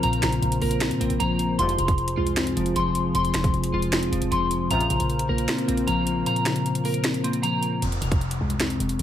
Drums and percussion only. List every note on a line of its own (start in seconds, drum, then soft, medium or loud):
0.03 closed hi-hat medium
0.13 closed hi-hat medium
0.23 finger snap medium
0.23 snare loud
0.23 closed hi-hat medium
0.32 closed hi-hat medium
0.43 closed hi-hat medium
0.52 closed hi-hat medium
0.62 open hi-hat medium
0.71 closed hi-hat medium
0.81 finger snap medium
0.81 snare loud
0.81 closed hi-hat medium
0.91 closed hi-hat medium
1.01 closed hi-hat medium
1.10 closed hi-hat medium
1.20 closed hi-hat medium
1.39 closed hi-hat medium
1.59 closed hi-hat medium
1.69 closed hi-hat medium
1.79 closed hi-hat medium
1.88 kick medium
1.88 closed hi-hat medium
1.98 closed hi-hat soft
2.08 closed hi-hat medium
2.27 closed hi-hat medium
2.37 finger snap medium
2.37 snare loud
2.37 closed hi-hat medium
2.47 closed hi-hat medium
2.57 closed hi-hat medium
2.66 closed hi-hat medium
2.76 closed hi-hat medium
2.95 closed hi-hat medium
3.15 closed hi-hat medium
3.25 closed hi-hat medium
3.34 finger snap medium
3.34 snare loud
3.34 closed hi-hat medium
3.44 kick loud
3.44 closed hi-hat medium
3.54 closed hi-hat soft
3.64 closed hi-hat medium
3.82 closed hi-hat medium
3.93 finger snap medium
3.93 snare loud
3.93 closed hi-hat medium
4.03 closed hi-hat medium
4.13 closed hi-hat medium
4.22 closed hi-hat medium
4.32 closed hi-hat medium
4.51 closed hi-hat medium
4.71 closed hi-hat medium
4.81 closed hi-hat medium
4.90 closed hi-hat medium
5.00 closed hi-hat medium
5.10 closed hi-hat soft
5.19 closed hi-hat medium
5.38 closed hi-hat medium
5.48 finger snap medium
5.48 snare loud
5.48 closed hi-hat medium
5.58 closed hi-hat medium
5.69 closed hi-hat medium
5.77 closed hi-hat medium
5.88 closed hi-hat medium
6.07 closed hi-hat medium
6.26 closed hi-hat medium
6.36 closed hi-hat medium
6.46 finger snap medium
6.46 snare loud
6.46 closed hi-hat medium
6.56 closed hi-hat medium
6.66 closed hi-hat medium
6.75 closed hi-hat medium
6.85 open hi-hat medium
6.94 closed hi-hat medium
7.04 finger snap medium
7.04 snare loud
7.04 closed hi-hat medium
7.14 closed hi-hat medium
7.24 closed hi-hat medium
7.33 closed hi-hat medium
7.43 closed hi-hat medium
7.63 closed hi-hat medium
7.82 closed hi-hat medium
7.92 closed hi-hat medium
8.02 closed hi-hat medium
8.12 kick loud
8.12 closed hi-hat medium
8.21 closed hi-hat soft
8.31 closed hi-hat medium
8.50 closed hi-hat medium
8.60 finger snap medium
8.60 snare loud
8.60 closed hi-hat medium
8.70 closed hi-hat medium
8.80 closed hi-hat medium
8.89 closed hi-hat medium
8.99 closed hi-hat medium